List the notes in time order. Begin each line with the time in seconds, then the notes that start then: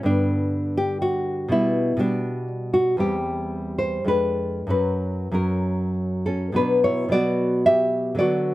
0.03 G2 D3 B3 D4
0.77 G4
1.02 F#4
1.48 B2 G3 B3 E4
1.97 B2 G3 D4
2.74 F#4
2.97 E2 G3 C4 G4
3.78 C5
4.04 F2 G#3 D4 B4
4.67 F#2 F#3 C#4 B4
5.31 F#2 F#3 C#4 A#4
6.26 C#4 A4
6.52 B2 F#3 B3 B4
6.58 D4
6.84 E4 C#5
7.08 B2 F#3 B3 D5
7.13 F#4
7.66 G4 E5
8.15 D3 F#3 B3 D5
8.20 F#4